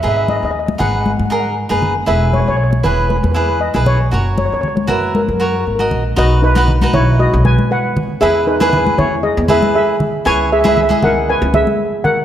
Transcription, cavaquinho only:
X:1
M:4/4
L:1/16
Q:"Swing 16ths" 1/4=117
K:B
V:1 name="Cavaquinho"
[DGB]4 z2 [DGB]2 z2 [DGA]2 z [DGB]2 z | [EGB]4 z2 [EGB]2 z2 [EGB]2 z [EGB]2 z | [FAc]4 z2 [FAe]2 z2 [FAc]2 z [FAd]2 z | [DFB]2 z [DFB] z [DFB]4- [DFB] z6 |
[EGB]2 z [EGB]4 z3 [EGB]4 z2 | [EGc]2 z [EGB] z [EGd]4- [EGd] z6 |]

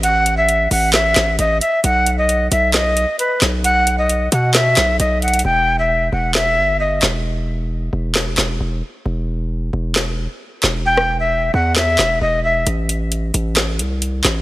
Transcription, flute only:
X:1
M:4/4
L:1/16
Q:1/4=133
K:Bphr
V:1 name="Flute"
f3 e3 f2 e4 ^d2 e2 | f3 ^d3 e2 d4 B2 z2 | f3 ^d3 f2 e4 d2 f2 | g3 e3 f2 e4 ^d2 z2 |
z16 | z16 | g3 e3 f2 e4 ^d2 e2 | z16 |]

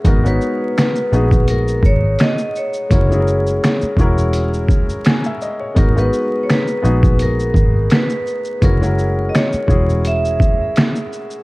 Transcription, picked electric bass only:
X:1
M:4/4
L:1/16
Q:"Swing 16ths" 1/4=84
K:G#m
V:1 name="Picked electric bass" clef=bass
G,,,2 z4 A,,,4 G,,,2 z4 | F,,,4 z2 E,,,4- E,,, z4 z | G,,,2 z4 A,,,4 G,,,2 z4 | F,,,4 z2 E,,,4- E,,, z4 z |]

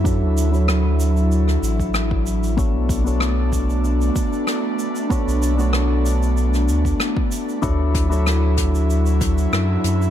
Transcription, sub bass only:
X:1
M:4/4
L:1/16
Q:1/4=95
K:D
V:1 name="Sub bass" clef=bass
F,, D,,8- D,, A,,,6- | A,,, B,,,8- B,,, z6 | z B,,,8- B,,, D,,2 z4 | D,,12 F,,2 F,,2 |]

